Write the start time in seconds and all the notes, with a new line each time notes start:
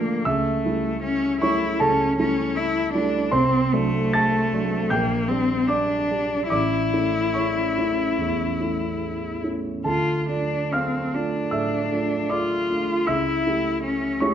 Already playing: A2 F3 A3 A#3 D4 D5 E5 D6 E6
0.25 C#2 A3 E5 E6
0.65 G3 A3 E4
1.03 C#4
1.41 G3 A3 E4 C#5 C#6
1.80 C#2 C#4 A4 A5
2.18 G3 A3 C#4 E4
2.56 E4
2.93 G3 A3 D4 E4
3.31 C2 C4 C5 C6
3.72 F#3 A3 D4
4.13 A5 A6
4.53 F#3 A3 D4
4.90 A#1 A#3 G5 G6
5.28 G3 C4 D4 G4
5.68 D4 D5 D6
6.10 G3 D4 G4
6.50 A1 E4 D5 D6
6.93 A3 C#4 E4
7.34 C#5 C#6
7.78 A3 C#4 E4
8.19 E2
8.59 A3 C#4 E4
9.43 A3 C#4 E4
9.84 D2 F4 A4 A5
10.29 A3 D4 F4
10.73 C4 F5 F6
11.14 A3 D4 F4
11.51 A2 E5 E6
11.91 A3 D4 F4
12.30 F4 D5 D6
12.70 A3 D4 F4
13.07 C#2 E4 E5 E6
13.46 A3 E4 G4
13.83 C#4
14.20 A3 E4 G4 C#5 C#6